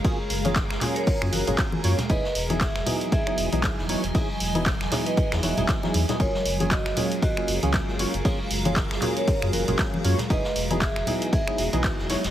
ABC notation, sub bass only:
X:1
M:4/4
L:1/16
Q:"Swing 16ths" 1/4=117
K:F#
V:1 name="Sub bass" clef=bass
z2 F,,,3 F,,, z3 F,, F,,, F,,, z2 F,, z | =E,,, z E,,,3 E,,, z4 E,,, B,,, z E,,, z E,,, | z2 =E,,,3 E,,, z3 =E,, E,,, E,,, z2 E,, z | F,,, z F,,,3 F,,, z4 F,,, C,, z F,,, z F,,, |
z2 F,,,3 F,,, z3 F,, F,,, F,,, z2 F,, z | =E,,, z E,,,3 E,,, z4 E,,, B,,, z E,,, z E,,, |]